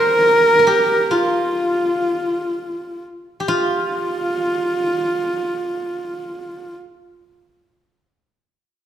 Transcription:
Already playing: guzheng G4 A#4 C5, horsehead fiddle A#4
0.59 guzheng A#4
0.67 guzheng G4
1.11 guzheng F4, horsehead fiddle F4
3.40 guzheng G4
3.48 guzheng F4, horsehead fiddle F4

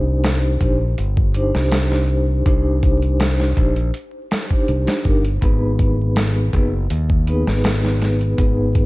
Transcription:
Already playing: fingered electric bass C2, vibraphone D4 D#4 G4 C5
0.24 snare, closed hi-hat
0.61 fingered electric bass A#1, vibraphone D4 D#4 G4 C5, kick, closed hi-hat
0.98 fingered electric bass G1, closed hi-hat
1.17 kick
1.34 vibraphone D4 D#4 G4 C5, closed hi-hat
1.55 fingered electric bass C2, snare
1.72 snare, closed hi-hat
1.92 snare
2.46 fingered electric bass C2, vibraphone D4 D#4 G4 C5, kick, closed hi-hat
2.83 kick, closed hi-hat
3.02 closed hi-hat
3.20 snare, closed hi-hat
3.40 snare
3.57 fingered electric bass A#1, vibraphone D4 D#4 G4 C5, kick, closed hi-hat
3.76 closed hi-hat
3.94 closed hi-hat
4.31 snare, closed hi-hat
4.51 vibraphone D4 D#4 G4 C5, kick
4.68 fingered electric bass C2, closed hi-hat
4.87 snare, closed hi-hat
5.05 fingered electric bass G1, vibraphone D4 D#4 G4 A#4, kick
5.25 closed hi-hat
5.41 fingered electric bass G#1, vibraphone B3 D#4 G#4 B4, kick, closed hi-hat
5.79 kick, closed hi-hat
6.16 snare, closed hi-hat
6.53 fingered electric bass F#1, vibraphone B3 D#4 G#4 B4, kick, closed hi-hat
6.90 fingered electric bass D#2, closed hi-hat
7.10 kick
7.27 vibraphone B3 D#4 G#4 B4, closed hi-hat
7.47 fingered electric bass G#1, snare
7.64 snare, closed hi-hat
7.85 snare
8.02 snare, closed hi-hat
8.21 closed hi-hat
8.38 fingered electric bass G#1, vibraphone B3 D#4 G#4 B4, kick, closed hi-hat
8.75 kick, closed hi-hat

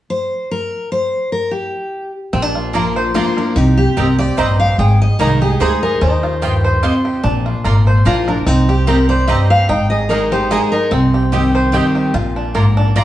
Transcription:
0.10 steel-string acoustic guitar C5
0.51 steel-string acoustic guitar A#4
0.92 steel-string acoustic guitar C5
1.32 steel-string acoustic guitar A#4
1.51 steel-string acoustic guitar G4
2.33 upright bass A#1, steel-string acoustic guitar A#2, five-string banjo C4
2.42 five-string banjo D4
2.55 five-string banjo F4
2.73 steel-string acoustic guitar F3 A#3 D4 F4, mandolin A#3 F4 D5 A#5, five-string banjo A#4
2.96 five-string banjo C5
3.14 steel-string acoustic guitar F3 A#3 D4 F4, mandolin A#3 F4 D5 A#5, five-string banjo F4
3.37 steel-string acoustic guitar D4, five-string banjo A#4
3.56 upright bass C2, steel-string acoustic guitar C3 D#4, five-string banjo G4
3.77 steel-string acoustic guitar G4
3.97 upright bass C2, steel-string acoustic guitar C3 A#4, mandolin C4 G4 D#5 A#5, five-string banjo C4
4.19 five-string banjo G4, steel-string acoustic guitar D5
4.37 upright bass A#1, steel-string acoustic guitar G2 D#5, mandolin C4 G4 D#5 A#5, five-string banjo C5
4.60 five-string banjo G4, steel-string acoustic guitar F5
4.78 upright bass G#1, steel-string acoustic guitar G#2 G5, five-string banjo G#4
5.02 steel-string acoustic guitar D#5
5.19 upright bass C2, steel-string acoustic guitar D#3 G#3 D#4 G#4 A#4, mandolin A#3 G#4 D#5 A#5, five-string banjo D#4
5.41 steel-string acoustic guitar D#4 G4 G#4, five-string banjo G#4
5.60 upright bass D2, steel-string acoustic guitar G#3 D#4 G#4, mandolin A#3 G#4 D#5 A#5, five-string banjo C5
5.83 five-string banjo G#4, steel-string acoustic guitar A#4
6.01 upright bass D#2, steel-string acoustic guitar D#3 C5, five-string banjo C#4
6.10 five-string banjo D#4
6.23 five-string banjo F4
6.42 steel-string acoustic guitar G2, mandolin A#3 F4 D#5 G5, five-string banjo G4
6.64 five-string banjo C5
6.83 steel-string acoustic guitar C3, mandolin A#3 F4 D#5 G5, five-string banjo F4
7.05 five-string banjo G4
7.23 upright bass A#1, steel-string acoustic guitar A#2, five-string banjo D4
7.46 five-string banjo F4
7.64 upright bass G#1, steel-string acoustic guitar G#2, mandolin A#3 F4 D5 A#5, five-string banjo A#4
7.87 five-string banjo C5
8.05 upright bass A#1, steel-string acoustic guitar A#2 F4, mandolin A#3 F4 D5 A#5, five-string banjo D4
8.28 steel-string acoustic guitar D4, five-string banjo A#4
8.46 upright bass C2, steel-string acoustic guitar C3 D#4, five-string banjo C4
8.69 five-string banjo G4, steel-string acoustic guitar G4
8.87 steel-string acoustic guitar C3 A#4, mandolin C4 G4 D#5 A#5, five-string banjo C4
9.09 five-string banjo C5, steel-string acoustic guitar D5
9.27 steel-string acoustic guitar G2 D#5, mandolin C4 G4 D#5 A#5, five-string banjo G4
9.50 five-string banjo C4, steel-string acoustic guitar F5
9.69 upright bass G#1, steel-string acoustic guitar G#2 G5, five-string banjo D#4
9.90 five-string banjo G#4, steel-string acoustic guitar D#5
10.09 steel-string acoustic guitar D#3 G#3 D#4 G#4 A#4, mandolin A#3 G#4 D#5 A#5, five-string banjo D#4
10.32 steel-string acoustic guitar D#4 G4 G#4, five-string banjo C5
10.51 steel-string acoustic guitar D#3 G#3 D#4 G#4, mandolin A#3 G#4 D#5 A#5, five-string banjo G#4
10.72 five-string banjo D#4, steel-string acoustic guitar A#4
10.91 upright bass C2, steel-string acoustic guitar C3, five-string banjo C4
11.14 five-string banjo G4
11.32 steel-string acoustic guitar D#3 G3 C4 G4, mandolin C4 G4 D#5 G5, five-string banjo G4
11.55 five-string banjo C5
11.72 steel-string acoustic guitar D#3 G3 C4 G4, mandolin C4 G4 D#5 G5, five-string banjo G4
11.95 five-string banjo G4
12.14 upright bass A#1, steel-string acoustic guitar A#2, five-string banjo F4
12.36 five-string banjo D4
12.55 steel-string acoustic guitar G#2, mandolin A#3 F4 D5 A#5, five-string banjo A#4
12.77 five-string banjo D4
12.96 steel-string acoustic guitar A#2 F4, mandolin A#3 F4 D5 A#5, five-string banjo F4

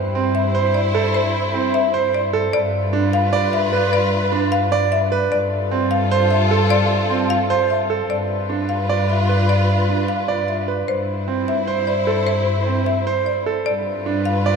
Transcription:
Already playing: double bass section G2, violin section E4 C5
0.15 grand piano C4
0.35 marimba E5
0.55 grand piano C5
0.74 marimba D5
0.95 grand piano A4
1.14 marimba C5
1.54 grand piano C4
1.74 marimba E5
1.94 grand piano C5
2.15 marimba D5
2.33 grand piano A4
2.53 double bass section G2, violin section F4 B4, marimba D5
2.93 grand piano D4
3.13 marimba F5
3.33 grand piano D5
3.53 marimba E5
3.73 grand piano B4
3.93 marimba D5
4.32 grand piano D4
4.52 marimba F5
4.72 grand piano D5
4.92 marimba E5
5.12 grand piano B4
5.31 double bass section G2, violin section F4 A4, marimba D5
5.71 grand piano C4
5.91 marimba F5
6.11 grand piano C5
6.31 marimba E5
6.51 grand piano A4
6.70 marimba D5
7.10 grand piano C4
7.30 marimba F5
7.50 grand piano C5
7.70 marimba E5
7.90 grand piano A4
8.09 double bass section G2, violin section F4 B4, marimba D5
8.50 grand piano D4
8.69 marimba F5
8.89 grand piano D5
9.10 marimba E5
9.29 grand piano B4
9.49 marimba D5
9.89 grand piano D4
10.08 marimba F5
10.28 grand piano D5
10.48 marimba E5
10.68 grand piano B4
10.88 double bass section G2, violin section E4 C5, marimba C5
11.28 grand piano C4
11.48 marimba E5
11.67 grand piano C5
11.87 marimba D5
12.07 grand piano A4
12.27 marimba C5
12.67 grand piano C4
12.86 marimba E5
13.07 grand piano C5
13.26 marimba D5
13.46 grand piano A4
13.66 double bass section G2, violin section F4 B4, marimba D5
14.06 grand piano D4
14.25 marimba F5
14.46 grand piano D5

